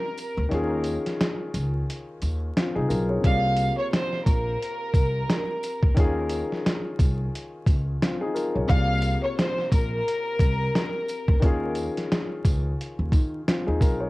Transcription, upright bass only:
0, 0, Header, 1, 2, 480
1, 0, Start_track
1, 0, Tempo, 681818
1, 362, Time_signature, 4, 2, 24, 8
1, 9924, End_track
2, 0, Start_track
2, 0, Title_t, "Upright bass"
2, 0, Program_c, 0, 32
2, 262, Note_on_c, 0, 38, 99
2, 343, Note_off_c, 0, 38, 0
2, 362, Note_on_c, 0, 39, 108
2, 672, Note_off_c, 0, 39, 0
2, 1083, Note_on_c, 0, 37, 85
2, 1278, Note_off_c, 0, 37, 0
2, 1563, Note_on_c, 0, 39, 85
2, 1758, Note_off_c, 0, 39, 0
2, 1944, Note_on_c, 0, 36, 86
2, 2024, Note_off_c, 0, 36, 0
2, 2043, Note_on_c, 0, 35, 92
2, 2238, Note_off_c, 0, 35, 0
2, 2282, Note_on_c, 0, 36, 104
2, 2592, Note_off_c, 0, 36, 0
2, 3002, Note_on_c, 0, 34, 94
2, 3197, Note_off_c, 0, 34, 0
2, 3476, Note_on_c, 0, 36, 85
2, 3674, Note_off_c, 0, 36, 0
2, 4103, Note_on_c, 0, 38, 99
2, 4183, Note_off_c, 0, 38, 0
2, 4202, Note_on_c, 0, 39, 105
2, 4513, Note_off_c, 0, 39, 0
2, 4922, Note_on_c, 0, 36, 90
2, 5117, Note_off_c, 0, 36, 0
2, 5397, Note_on_c, 0, 37, 94
2, 5594, Note_off_c, 0, 37, 0
2, 6023, Note_on_c, 0, 35, 88
2, 6104, Note_off_c, 0, 35, 0
2, 6123, Note_on_c, 0, 36, 106
2, 6433, Note_off_c, 0, 36, 0
2, 6842, Note_on_c, 0, 34, 93
2, 7037, Note_off_c, 0, 34, 0
2, 7317, Note_on_c, 0, 36, 88
2, 7514, Note_off_c, 0, 36, 0
2, 7943, Note_on_c, 0, 38, 98
2, 8023, Note_off_c, 0, 38, 0
2, 8043, Note_on_c, 0, 39, 107
2, 8353, Note_off_c, 0, 39, 0
2, 8763, Note_on_c, 0, 37, 89
2, 8958, Note_off_c, 0, 37, 0
2, 9144, Note_on_c, 0, 39, 97
2, 9224, Note_off_c, 0, 39, 0
2, 9238, Note_on_c, 0, 51, 103
2, 9435, Note_off_c, 0, 51, 0
2, 9627, Note_on_c, 0, 39, 93
2, 9706, Note_off_c, 0, 39, 0
2, 9721, Note_on_c, 0, 35, 84
2, 9916, Note_off_c, 0, 35, 0
2, 9924, End_track
0, 0, End_of_file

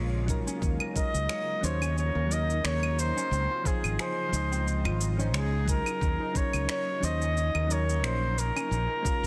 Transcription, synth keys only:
0, 0, Header, 1, 2, 480
1, 0, Start_track
1, 0, Tempo, 674157
1, 442, Time_signature, 4, 2, 24, 8
1, 6599, End_track
2, 0, Start_track
2, 0, Title_t, "Synth keys"
2, 0, Program_c, 0, 88
2, 187, Note_on_c, 0, 54, 94
2, 197, Note_on_c, 0, 61, 90
2, 204, Note_on_c, 0, 63, 89
2, 213, Note_on_c, 0, 70, 104
2, 649, Note_off_c, 0, 54, 0
2, 654, Note_off_c, 0, 61, 0
2, 657, Note_off_c, 0, 63, 0
2, 662, Note_off_c, 0, 70, 0
2, 665, Note_on_c, 0, 54, 71
2, 673, Note_on_c, 0, 61, 64
2, 682, Note_on_c, 0, 63, 67
2, 691, Note_on_c, 0, 70, 83
2, 1128, Note_off_c, 0, 54, 0
2, 1132, Note_off_c, 0, 61, 0
2, 1136, Note_off_c, 0, 63, 0
2, 1141, Note_off_c, 0, 70, 0
2, 1144, Note_on_c, 0, 54, 90
2, 1154, Note_on_c, 0, 61, 82
2, 1164, Note_on_c, 0, 63, 79
2, 1171, Note_on_c, 0, 72, 104
2, 1277, Note_off_c, 0, 54, 0
2, 1282, Note_off_c, 0, 61, 0
2, 1286, Note_off_c, 0, 63, 0
2, 1290, Note_off_c, 0, 72, 0
2, 1616, Note_on_c, 0, 54, 80
2, 1633, Note_on_c, 0, 61, 74
2, 1651, Note_on_c, 0, 63, 68
2, 1669, Note_on_c, 0, 70, 83
2, 2336, Note_off_c, 0, 54, 0
2, 2345, Note_off_c, 0, 61, 0
2, 2354, Note_off_c, 0, 63, 0
2, 2363, Note_off_c, 0, 70, 0
2, 2587, Note_on_c, 0, 53, 83
2, 2605, Note_on_c, 0, 63, 76
2, 2615, Note_on_c, 0, 72, 90
2, 3044, Note_off_c, 0, 53, 0
2, 3053, Note_on_c, 0, 53, 87
2, 3058, Note_off_c, 0, 63, 0
2, 3063, Note_off_c, 0, 72, 0
2, 3088, Note_on_c, 0, 63, 78
2, 3106, Note_on_c, 0, 75, 96
2, 3648, Note_off_c, 0, 53, 0
2, 3665, Note_off_c, 0, 63, 0
2, 3675, Note_off_c, 0, 75, 0
2, 3679, Note_on_c, 0, 53, 86
2, 3687, Note_on_c, 0, 61, 84
2, 3696, Note_on_c, 0, 63, 84
2, 3705, Note_on_c, 0, 72, 91
2, 3750, Note_off_c, 0, 53, 0
2, 3754, Note_off_c, 0, 61, 0
2, 3759, Note_off_c, 0, 63, 0
2, 3763, Note_off_c, 0, 72, 0
2, 4024, Note_on_c, 0, 54, 95
2, 4043, Note_on_c, 0, 63, 84
2, 4053, Note_on_c, 0, 70, 103
2, 4487, Note_off_c, 0, 54, 0
2, 4497, Note_off_c, 0, 63, 0
2, 4502, Note_off_c, 0, 70, 0
2, 4503, Note_on_c, 0, 54, 68
2, 4512, Note_on_c, 0, 61, 67
2, 4521, Note_on_c, 0, 63, 63
2, 4531, Note_on_c, 0, 70, 80
2, 4967, Note_off_c, 0, 54, 0
2, 4971, Note_off_c, 0, 61, 0
2, 4976, Note_off_c, 0, 63, 0
2, 4981, Note_off_c, 0, 70, 0
2, 4985, Note_on_c, 0, 54, 92
2, 4992, Note_on_c, 0, 61, 81
2, 5003, Note_on_c, 0, 63, 81
2, 5012, Note_on_c, 0, 72, 104
2, 5117, Note_off_c, 0, 54, 0
2, 5121, Note_off_c, 0, 61, 0
2, 5126, Note_off_c, 0, 63, 0
2, 5131, Note_off_c, 0, 72, 0
2, 5462, Note_on_c, 0, 54, 75
2, 5470, Note_on_c, 0, 61, 69
2, 5480, Note_on_c, 0, 63, 74
2, 5488, Note_on_c, 0, 70, 79
2, 5939, Note_off_c, 0, 54, 0
2, 5943, Note_off_c, 0, 61, 0
2, 5948, Note_off_c, 0, 63, 0
2, 5952, Note_off_c, 0, 70, 0
2, 6425, Note_on_c, 0, 56, 84
2, 6434, Note_on_c, 0, 61, 76
2, 6442, Note_on_c, 0, 65, 80
2, 6452, Note_on_c, 0, 70, 90
2, 6599, Note_off_c, 0, 56, 0
2, 6599, Note_off_c, 0, 61, 0
2, 6599, Note_off_c, 0, 65, 0
2, 6599, Note_off_c, 0, 70, 0
2, 6599, End_track
0, 0, End_of_file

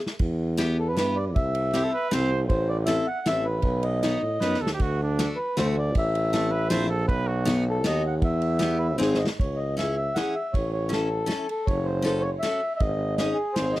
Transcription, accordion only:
0, 0, Header, 1, 2, 480
1, 0, Start_track
1, 0, Key_signature, 1, "minor"
1, 0, Tempo, 384123
1, 254, Time_signature, 3, 2, 24, 8
1, 6966, Tempo, 380711
1, 11770, Key_signature, 4, "minor"
1, 17337, End_track
2, 0, Start_track
2, 0, Title_t, "Accordion"
2, 0, Program_c, 0, 21
2, 987, Note_on_c, 0, 69, 79
2, 1099, Note_off_c, 0, 69, 0
2, 1100, Note_on_c, 0, 71, 81
2, 1201, Note_off_c, 0, 71, 0
2, 1220, Note_on_c, 0, 71, 96
2, 1447, Note_on_c, 0, 74, 86
2, 1474, Note_off_c, 0, 71, 0
2, 1560, Note_off_c, 0, 74, 0
2, 1687, Note_on_c, 0, 76, 88
2, 2595, Note_off_c, 0, 76, 0
2, 3098, Note_on_c, 0, 72, 91
2, 3359, Note_on_c, 0, 74, 88
2, 3361, Note_off_c, 0, 72, 0
2, 3468, Note_off_c, 0, 74, 0
2, 3574, Note_on_c, 0, 76, 106
2, 3838, Note_off_c, 0, 76, 0
2, 3841, Note_on_c, 0, 78, 117
2, 4084, Note_off_c, 0, 78, 0
2, 4088, Note_on_c, 0, 76, 104
2, 4312, Note_on_c, 0, 71, 86
2, 4328, Note_off_c, 0, 76, 0
2, 4783, Note_on_c, 0, 75, 86
2, 4802, Note_off_c, 0, 71, 0
2, 4997, Note_off_c, 0, 75, 0
2, 5016, Note_on_c, 0, 75, 85
2, 5709, Note_off_c, 0, 75, 0
2, 6694, Note_on_c, 0, 71, 89
2, 6956, Note_off_c, 0, 71, 0
2, 6983, Note_on_c, 0, 72, 83
2, 7088, Note_off_c, 0, 72, 0
2, 7226, Note_on_c, 0, 74, 97
2, 7436, Note_off_c, 0, 74, 0
2, 7479, Note_on_c, 0, 76, 96
2, 8357, Note_off_c, 0, 76, 0
2, 9642, Note_on_c, 0, 69, 97
2, 9854, Note_off_c, 0, 69, 0
2, 9854, Note_on_c, 0, 75, 98
2, 10084, Note_off_c, 0, 75, 0
2, 10110, Note_on_c, 0, 78, 85
2, 10205, Note_off_c, 0, 78, 0
2, 10332, Note_on_c, 0, 76, 86
2, 11012, Note_on_c, 0, 71, 94
2, 11126, Note_off_c, 0, 71, 0
2, 11239, Note_off_c, 0, 76, 0
2, 11258, Note_on_c, 0, 72, 83
2, 11495, Note_on_c, 0, 75, 75
2, 11525, Note_off_c, 0, 72, 0
2, 11612, Note_off_c, 0, 75, 0
2, 11785, Note_on_c, 0, 73, 74
2, 11995, Note_on_c, 0, 75, 61
2, 12033, Note_off_c, 0, 73, 0
2, 12230, Note_off_c, 0, 75, 0
2, 12264, Note_on_c, 0, 76, 91
2, 12484, Note_off_c, 0, 76, 0
2, 12503, Note_on_c, 0, 76, 93
2, 12730, Note_on_c, 0, 78, 100
2, 12752, Note_off_c, 0, 76, 0
2, 12986, Note_on_c, 0, 76, 79
2, 12989, Note_off_c, 0, 78, 0
2, 13211, Note_on_c, 0, 73, 75
2, 13231, Note_off_c, 0, 76, 0
2, 13443, Note_off_c, 0, 73, 0
2, 13462, Note_on_c, 0, 73, 76
2, 13707, Note_off_c, 0, 73, 0
2, 13716, Note_on_c, 0, 69, 86
2, 14418, Note_off_c, 0, 69, 0
2, 14437, Note_on_c, 0, 69, 83
2, 14646, Note_on_c, 0, 73, 96
2, 14649, Note_off_c, 0, 69, 0
2, 14874, Note_on_c, 0, 72, 74
2, 14898, Note_off_c, 0, 73, 0
2, 15109, Note_off_c, 0, 72, 0
2, 15128, Note_on_c, 0, 72, 99
2, 15338, Note_on_c, 0, 73, 101
2, 15351, Note_off_c, 0, 72, 0
2, 15451, Note_off_c, 0, 73, 0
2, 15563, Note_on_c, 0, 76, 91
2, 15986, Note_off_c, 0, 76, 0
2, 16018, Note_on_c, 0, 76, 61
2, 16049, Note_on_c, 0, 75, 85
2, 16093, Note_off_c, 0, 76, 0
2, 16517, Note_off_c, 0, 75, 0
2, 16536, Note_on_c, 0, 75, 90
2, 16759, Note_on_c, 0, 68, 74
2, 16798, Note_off_c, 0, 75, 0
2, 17001, Note_on_c, 0, 72, 92
2, 17027, Note_off_c, 0, 68, 0
2, 17243, Note_on_c, 0, 75, 82
2, 17275, Note_off_c, 0, 72, 0
2, 17337, Note_off_c, 0, 75, 0
2, 17337, End_track
0, 0, End_of_file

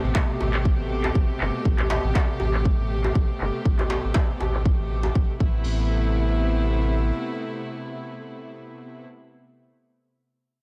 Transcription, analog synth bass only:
0, 0, Header, 1, 2, 480
1, 0, Start_track
1, 0, Key_signature, 0, "minor"
1, 0, Tempo, 500000
1, 1588, Time_signature, 4, 2, 24, 8
1, 10196, End_track
2, 0, Start_track
2, 0, Title_t, "Analog synth bass"
2, 0, Program_c, 0, 38
2, 36, Note_on_c, 0, 33, 85
2, 118, Note_off_c, 0, 33, 0
2, 389, Note_on_c, 0, 33, 84
2, 702, Note_off_c, 0, 33, 0
2, 758, Note_on_c, 0, 33, 84
2, 1061, Note_off_c, 0, 33, 0
2, 1107, Note_on_c, 0, 33, 81
2, 1202, Note_off_c, 0, 33, 0
2, 1348, Note_on_c, 0, 31, 98
2, 1442, Note_off_c, 0, 31, 0
2, 1588, Note_on_c, 0, 33, 99
2, 1902, Note_off_c, 0, 33, 0
2, 1957, Note_on_c, 0, 33, 89
2, 2039, Note_off_c, 0, 33, 0
2, 2310, Note_on_c, 0, 33, 88
2, 2623, Note_off_c, 0, 33, 0
2, 2678, Note_on_c, 0, 33, 86
2, 2981, Note_off_c, 0, 33, 0
2, 3028, Note_on_c, 0, 33, 79
2, 3122, Note_off_c, 0, 33, 0
2, 3269, Note_on_c, 0, 31, 99
2, 3363, Note_off_c, 0, 31, 0
2, 3509, Note_on_c, 0, 33, 97
2, 3822, Note_off_c, 0, 33, 0
2, 3878, Note_on_c, 0, 33, 86
2, 3959, Note_off_c, 0, 33, 0
2, 4232, Note_on_c, 0, 33, 87
2, 4544, Note_off_c, 0, 33, 0
2, 4600, Note_on_c, 0, 33, 84
2, 4902, Note_off_c, 0, 33, 0
2, 4949, Note_on_c, 0, 33, 78
2, 5043, Note_off_c, 0, 33, 0
2, 5189, Note_on_c, 0, 33, 91
2, 6830, Note_off_c, 0, 33, 0
2, 10196, End_track
0, 0, End_of_file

